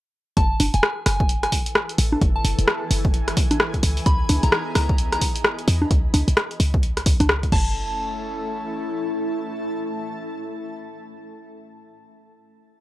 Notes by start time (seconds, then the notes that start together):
0.37 F#1 E3 A5, kick, closed hi-hat
0.60 F#1, open hi-hat, high conga
0.69 A4
0.74 E1 G#5, closed hi-hat
0.83 cross-stick
1.06 F#1 G#5, cross-stick, open hi-hat
1.20 kick
1.29 closed hi-hat
1.43 G#5, cross-stick, closed hi-hat
1.52 G#5, kick, open hi-hat
1.66 closed hi-hat
1.75 cross-stick
1.89 closed hi-hat
1.98 A1, open hi-hat
2.12 high conga
2.21 F#1, kick, closed hi-hat
2.36 A5
2.45 F#1, open hi-hat
2.59 E1, closed hi-hat
2.68 cross-stick
2.91 F#1, open hi-hat
3.05 kick
3.14 closed hi-hat
3.28 cross-stick, closed hi-hat
3.37 kick, open hi-hat
3.51 closed hi-hat, high conga
3.60 cross-stick
3.74 kick, closed hi-hat
3.83 C#2, open hi-hat
3.97 open hi-hat
4.06 C#2 B3 D#4 E4 G#4 B5, kick, closed hi-hat
4.21 D#5
4.29 C#2, open hi-hat, high conga
4.43 B1 A#5, closed hi-hat
4.52 cross-stick
4.75 C#2 A#5, cross-stick, open hi-hat
4.89 kick
4.98 closed hi-hat
5.12 A#5, cross-stick, closed hi-hat
5.21 kick, open hi-hat
5.36 closed hi-hat
5.44 cross-stick
5.59 closed hi-hat
5.68 E2, open hi-hat
5.82 high conga
5.91 C#2, kick, closed hi-hat
6.14 C#2, open hi-hat, high conga
6.28 B1, closed hi-hat
6.37 cross-stick, closed hi-hat
6.51 closed hi-hat
6.60 C#2, open hi-hat
6.74 kick
6.83 closed hi-hat
6.97 cross-stick, closed hi-hat
7.06 C#2, kick, open hi-hat
7.20 C#2, closed hi-hat, high conga
7.29 cross-stick
7.43 kick, closed hi-hat
7.52 F#1 A3 C#4 E4 A4 A5, kick, crash
7.60 A3
7.91 A5